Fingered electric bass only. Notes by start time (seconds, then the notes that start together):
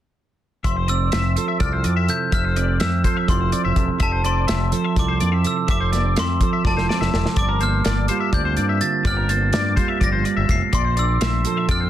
0.65 F1
1.13 F1
1.60 C2
1.85 F2
2.33 F1
2.81 F2
3.29 F1
3.65 F1
3.77 E1
4.00 F1
4.49 F1
4.97 C2
5.22 F2
5.69 F1
6.18 F2
6.65 F1
7.01 F1
7.14 E1
7.37 G1
7.86 G1
8.33 D2
8.58 G2
9.05 G1
9.53 G2
10.01 G1
10.37 G1
10.49 F1
10.74 A#1
11.22 A#1
11.69 F2